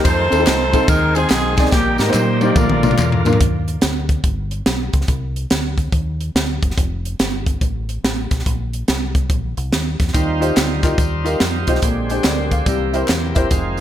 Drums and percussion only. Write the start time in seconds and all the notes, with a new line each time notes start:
0.05 kick, ride, tambourine
0.32 ride, tambourine
0.47 snare, clap, ride, tambourine
0.73 kick, ride, tambourine
0.88 kick, ride, tambourine
1.15 ride, tambourine
1.30 snare, clap, ride, tambourine
1.57 kick, snare, ride, tambourine
1.66 snare
1.71 kick, snare, tambourine
1.98 snare, tambourine
2.14 clap, high tom, tambourine
2.41 high tom, tambourine
2.56 kick, mid tom, tambourine
2.70 mid tom
2.83 mid tom, tambourine
2.91 mid tom
2.98 clap, mid tom, tambourine
3.12 floor tom
3.25 floor tom, tambourine
3.33 floor tom
3.41 kick, closed hi-hat
3.68 closed hi-hat
3.81 snare, closed hi-hat
4.09 kick, closed hi-hat
4.24 kick, closed hi-hat
4.51 closed hi-hat
4.66 snare, closed hi-hat
4.93 kick, closed hi-hat
5.01 snare
5.08 kick, closed hi-hat
5.36 closed hi-hat
5.50 snare, closed hi-hat
5.78 kick, closed hi-hat
5.92 kick, closed hi-hat
6.21 closed hi-hat
6.36 snare, closed hi-hat
6.63 kick, closed hi-hat
6.71 snare
6.78 kick, closed hi-hat
7.05 closed hi-hat
7.19 snare, closed hi-hat
7.46 kick, closed hi-hat
7.61 kick, closed hi-hat
7.89 closed hi-hat
8.04 snare, closed hi-hat
8.31 kick, snare, closed hi-hat
8.39 snare
8.46 kick, closed hi-hat
8.73 closed hi-hat
8.88 snare, closed hi-hat
9.15 kick, closed hi-hat
9.30 kick, closed hi-hat
9.57 closed hi-hat
9.73 snare, closed hi-hat
10.00 kick, snare, closed hi-hat
10.08 snare
10.14 kick, closed hi-hat, tambourine
10.42 closed hi-hat, tambourine
10.57 snare, clap, closed hi-hat, tambourine
10.83 kick, clap, closed hi-hat, tambourine
10.98 kick, closed hi-hat, tambourine
11.26 closed hi-hat, tambourine
11.40 snare, clap, closed hi-hat, tambourine
11.67 kick, closed hi-hat, tambourine
11.75 snare
11.82 kick, closed hi-hat, tambourine
12.10 closed hi-hat, tambourine
12.24 snare, clap, closed hi-hat, tambourine
12.51 kick, closed hi-hat, tambourine
12.66 kick, closed hi-hat, tambourine
12.94 closed hi-hat, tambourine
13.08 snare, clap, closed hi-hat, tambourine
13.35 kick, closed hi-hat, tambourine
13.51 kick, closed hi-hat, tambourine